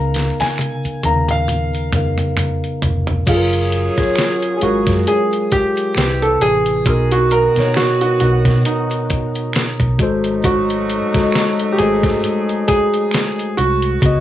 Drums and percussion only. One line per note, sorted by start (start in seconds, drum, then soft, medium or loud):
0.14 snare medium
0.14 closed hi-hat medium
0.14 shaker soft
0.38 snare medium
0.38 closed hi-hat soft
0.38 shaker medium
0.58 finger snap medium
0.58 closed hi-hat medium
0.58 high tom medium
0.58 shaker medium
0.83 closed hi-hat soft
0.83 shaker medium
1.03 closed hi-hat medium
1.03 high tom medium
1.03 shaker soft
1.28 closed hi-hat medium
1.28 mid tom medium
1.28 shaker soft
1.47 closed hi-hat medium
1.47 mid tom medium
1.47 shaker medium
1.73 closed hi-hat soft
1.73 shaker soft
1.92 closed hi-hat medium
1.92 mid tom loud
1.92 shaker soft
2.18 closed hi-hat soft
2.18 mid tom medium
2.18 shaker soft
2.37 finger snap medium
2.37 closed hi-hat medium
2.37 mid tom medium
2.37 shaker medium
2.63 closed hi-hat soft
2.63 shaker medium
2.82 closed hi-hat medium
2.82 floor tom loud
2.82 shaker soft
3.07 closed hi-hat medium
3.07 floor tom loud
3.07 shaker soft
3.26 kick loud
3.26 closed hi-hat medium
3.26 crash medium
3.26 shaker medium
3.52 closed hi-hat medium
3.52 shaker soft
3.71 closed hi-hat medium
3.71 shaker soft
3.96 kick medium
3.96 closed hi-hat soft
3.96 shaker medium
4.00 snare soft
4.16 finger snap medium
4.16 snare loud
4.16 closed hi-hat medium
4.16 shaker medium
4.41 closed hi-hat soft
4.41 shaker medium
4.61 closed hi-hat medium
4.86 kick medium
4.86 snare soft
4.86 closed hi-hat medium
4.86 shaker soft
5.05 closed hi-hat medium
5.05 shaker medium
5.31 closed hi-hat soft
5.31 shaker soft
5.51 kick medium
5.51 closed hi-hat medium
5.51 shaker soft
5.75 closed hi-hat soft
5.75 shaker soft
5.95 finger snap medium
5.95 snare loud
5.95 closed hi-hat medium
5.95 shaker medium
6.22 closed hi-hat soft
6.22 shaker medium
6.41 closed hi-hat medium
6.65 closed hi-hat soft
6.65 shaker soft
6.84 kick loud
6.84 closed hi-hat medium
6.84 shaker medium
7.10 closed hi-hat medium
7.10 shaker soft
7.29 closed hi-hat medium
7.29 shaker soft
7.54 closed hi-hat soft
7.54 shaker soft
7.59 snare soft
7.74 finger snap medium
7.74 snare loud
7.74 closed hi-hat medium
7.74 shaker medium
8.00 closed hi-hat soft
8.00 shaker soft
8.20 closed hi-hat medium
8.45 kick medium
8.45 snare soft
8.45 closed hi-hat soft
8.45 shaker soft
8.64 closed hi-hat medium
8.64 shaker medium
8.90 closed hi-hat soft
8.90 shaker soft
9.09 kick medium
9.09 closed hi-hat medium
9.09 shaker soft
9.34 closed hi-hat soft
9.34 shaker soft
9.53 finger snap medium
9.53 snare loud
9.53 closed hi-hat medium
9.53 shaker medium
9.80 kick medium
9.80 closed hi-hat soft
9.80 shaker medium
9.99 kick medium
9.99 closed hi-hat medium
10.24 closed hi-hat soft
10.24 shaker soft
10.42 kick loud
10.42 closed hi-hat medium
10.42 shaker medium
10.69 closed hi-hat medium
10.69 shaker soft
10.87 closed hi-hat medium
10.87 shaker soft
11.12 kick medium
11.12 closed hi-hat soft
11.12 shaker medium
11.17 snare soft
11.32 finger snap medium
11.32 snare loud
11.32 closed hi-hat medium
11.32 shaker medium
11.57 closed hi-hat medium
11.57 shaker soft
11.78 closed hi-hat medium
12.03 kick loud
12.03 snare soft
12.03 closed hi-hat medium
12.03 shaker soft
12.22 closed hi-hat medium
12.22 shaker medium
12.48 closed hi-hat soft
12.48 shaker soft
12.67 kick medium
12.67 closed hi-hat medium
12.67 shaker soft
12.92 closed hi-hat soft
12.92 shaker soft
13.11 finger snap medium
13.11 snare loud
13.11 closed hi-hat medium
13.11 shaker medium
13.38 closed hi-hat soft
13.38 shaker medium
13.58 closed hi-hat medium
13.82 closed hi-hat soft
13.82 shaker soft
14.00 kick loud
14.00 closed hi-hat medium
14.00 shaker medium